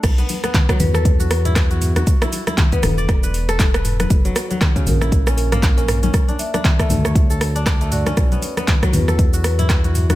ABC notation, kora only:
X:1
M:4/4
L:1/16
Q:"Swing 16ths" 1/4=118
K:Bm
V:1 name="Kora"
z B, z B, z F, z A z F z E z F z F | z E z E z B, z d z B z A z B z B | z F, z F, z C, z E z C z ^A, z C z C | z D z D z A, z c z A z D z A, F C |
z B, z B, z F, z A z F z E z F z F |]